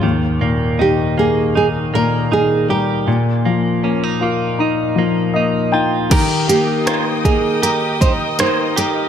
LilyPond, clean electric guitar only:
\new Staff \with { instrumentName = "Clean electric guitar" } { \time 4/4 \key ees \mixolydian \tempo 4 = 79 ees8 bes8 ees'8 bes8 ees'8 bes8 ees'8 g'8 | bes,8 bes8 des'16 ees'16 bes8 ees'8 bes8 ees'8 f'8 | <ees g'>8 bes8 f'16 r16 ees'8 g'8 ees'8 bes8 g'8 | }